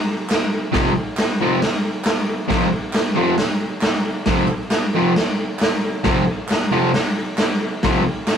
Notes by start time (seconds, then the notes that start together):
0.30 snare, clap, open hi-hat
0.72 F2 C3 F3, kick, snare, open hi-hat
1.17 snare, clap, open hi-hat
1.41 F2 C3 F3
1.62 snare, open hi-hat
2.05 snare, clap, open hi-hat
2.48 F2 C3 F3, kick, snare, open hi-hat
2.93 snare, clap, open hi-hat
3.15 F2 C3 F3
3.38 snare, open hi-hat
3.81 snare, clap, open hi-hat
4.26 F2 C3 F3, kick, snare, open hi-hat
4.48 clap
4.71 snare, clap, open hi-hat
4.95 F2 C3 F3
5.16 snare, open hi-hat
5.59 snare, clap, open hi-hat
6.04 F2 C3 F3, kick, snare, open hi-hat
6.49 snare, clap, open hi-hat
6.72 F2 C3 F3
6.94 snare, open hi-hat
7.38 snare, clap, open hi-hat
7.83 F2 C3 F3, kick, snare, open hi-hat
8.27 snare, clap, open hi-hat